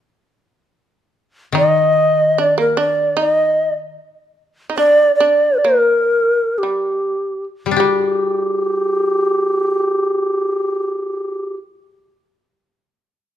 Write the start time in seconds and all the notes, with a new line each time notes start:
1.52 D#3 D#4
1.58 D#5
2.38 D4 D5
2.58 A#3 A#4
2.77 D4 D5
3.17 D#4
3.21 D#5
4.70 D#4
4.77 D4 D5
5.15 D5
5.20 D4
5.58 A#4
5.64 A#3
6.58 G4
6.63 G3
7.66 G3
7.71 D4
7.76 G3 G4